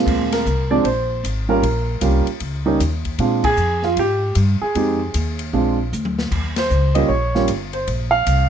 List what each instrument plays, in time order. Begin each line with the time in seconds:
Already playing: upright piano A#2 F3 G#3 C4 F4
0.06 upright bass D2, kick, crash
0.32 upright piano A#4, snare, ride
0.46 upright bass C2, kick, hi-hat pedal
0.71 upright piano F3 G#3 C4 D4 D5
0.84 upright bass A#1, upright piano C5, kick, ride
1.24 upright bass G#1, kick, hi-hat pedal, ride
1.49 upright piano G3 A#3 C#4 F4 A#4
1.62 upright bass A#1, kick, ride
2.01 upright bass C2, upright piano G3 A#3 C#4 F4, kick, hi-hat pedal, ride
2.27 ride
2.40 upright bass C#2, kick, ride
2.66 upright piano G3 A#3 C#4 D#4
2.80 upright bass D#2, kick, hi-hat pedal, ride
3.05 kick, ride
3.19 upright bass A#2, upright piano G#3 C4 D4 F4, kick, ride
3.44 upright piano G#4, kick, crash
3.57 upright bass F2, hi-hat pedal
3.83 upright piano F4, snare
3.96 upright bass G#2, upright piano G4, kick, ride
4.35 upright bass G2, kick, hi-hat pedal, ride
4.61 upright piano G#4, muted upright bass stroke
4.75 upright bass F2, upright piano G#3 C4 D#4 G4, kick, ride
5.14 upright bass D#2, kick, hi-hat pedal, ride
5.39 ride
5.53 upright bass A#1, upright piano G#3 C4 D4 F4, kick
5.93 upright bass D2, hi-hat pedal
6.05 high tom
6.19 snare
6.31 upright bass D#2, kick, crash
6.56 upright piano C5, snare, ride
6.70 upright bass C#2, hi-hat pedal
6.95 upright piano G3 A#3 C#4 F4 D#5, ride
7.08 upright bass A#1, upright piano C#5, kick
7.35 upright piano G3 A#3 C#4 F4, snare
7.48 upright bass G1, kick, hi-hat pedal, ride
7.73 upright piano C5, ride
7.87 upright bass A#1, kick, ride
8.11 upright piano F5
8.26 upright bass C2, kick, hi-hat pedal, ride